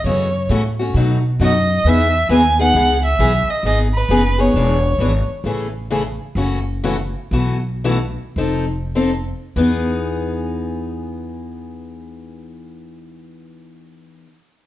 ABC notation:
X:1
M:4/4
L:1/8
Q:"Swing" 1/4=129
K:E
V:1 name="Violin"
c2 z4 d2 | e2 g f2 e2 d | d B2 c4 z | z8 |
z8 | z8 | z8 |]
V:2 name="Steel-string acoustic guitar"
[C,E,A,CF] z [C,E,A,CF] [A,CF] [B,,F,A,DF] z [B,,F,A,DF] z | [E,B,DG] z [E,B,DG] [B,DG] [E,B,DG] z [E,B,DG] z | [E,B,DG] z [E,B,DG] [B,DG] [E,B,=DG] z [E,B,DG] z | [C,E,A,CG] z [C,E,A,CG] z [C,E,A,CF] z [C,E,A,CF] z |
[B,,E,A,EF] z [B,,E,A,EF] z [=F,=C_EA] z [F,CEA] z | [E,B,DG]8- | [E,B,DG]8 |]
V:3 name="Upright bass" clef=bass
F,,2 A,,2 B,,2 F,,2 | E,,2 D,,2 C,,2 B,,, z | G,,,2 F,,,2 E,,,2 G,,, z | A,,,4 F,,,4 |
B,,,4 =F,,,4 | E,,8- | E,,8 |]